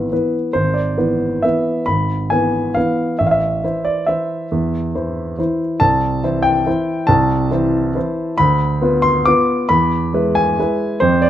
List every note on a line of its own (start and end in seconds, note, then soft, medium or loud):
0.00 0.13 G#1 soft
0.00 0.12 E3 soft
0.00 0.12 B3 soft
0.00 0.13 B4 soft
0.00 0.33 E5 medium
0.12 0.51 E3 soft
0.12 0.51 B3 soft
0.12 0.51 B4 soft
0.53 0.97 G#1 soft
0.53 0.75 C5 medium
0.74 1.43 D5 medium
0.97 1.39 E3 soft
0.97 1.39 B3 soft
0.97 1.40 B4 soft
1.42 1.84 E3 soft
1.42 1.84 B3 soft
1.42 1.84 B4 soft
1.42 1.87 E5 medium
1.86 2.30 G#1 soft
1.86 2.31 B5 medium
2.30 2.72 E3 soft
2.30 2.73 B3 soft
2.30 2.73 B4 soft
2.30 2.76 G#5 medium
2.75 3.16 E3 soft
2.75 3.16 B3 soft
2.75 3.16 B4 soft
2.75 3.19 F5 medium
3.19 3.62 A1 soft
3.19 3.26 E5 medium
3.27 3.33 F5 medium
3.31 3.84 E5 medium
3.64 4.04 E3 soft
3.64 4.04 E4 soft
3.64 4.04 C5 soft
3.85 4.07 D5 medium
4.06 4.47 E3 soft
4.06 4.47 E4 soft
4.06 4.48 C5 soft
4.06 5.60 E5 medium
4.52 4.93 E2 soft
4.95 5.35 E3 soft
4.95 5.35 E4 soft
4.95 5.35 C5 soft
5.38 5.77 E3 soft
5.38 5.77 E4 soft
5.38 5.78 C5 soft
5.80 6.22 C2 medium
5.80 6.44 A5 medium
6.24 6.63 E3 soft
6.24 6.63 E4 soft
6.24 6.63 C5 soft
6.43 7.08 G5 medium
6.66 7.05 E3 soft
6.66 7.05 E4 soft
6.66 7.05 C5 soft
7.07 7.50 C2 medium
7.07 8.38 A5 medium
7.51 7.92 E3 soft
7.51 7.92 E4 soft
7.51 7.92 C5 soft
7.95 8.35 E3 soft
7.95 8.35 E4 soft
7.95 8.36 C5 soft
8.38 8.81 D2 medium
8.38 9.03 B5 medium
8.82 9.22 B3 soft
8.82 9.22 F4 soft
8.82 9.23 B4 soft
9.02 9.26 C6 medium
9.26 9.66 B3 soft
9.26 9.67 F4 soft
9.26 9.67 B4 soft
9.26 9.70 D6 medium
9.69 10.12 E2 medium
9.69 10.34 B5 medium
10.14 10.54 G#3 soft
10.14 10.54 E4 soft
10.14 10.54 B4 soft
10.35 11.01 G#5 medium
10.59 10.98 G#3 soft
10.59 10.98 E4 soft
10.59 10.98 B4 soft
11.00 11.30 F2 medium
11.00 11.22 C5 medium
11.22 11.30 D5 medium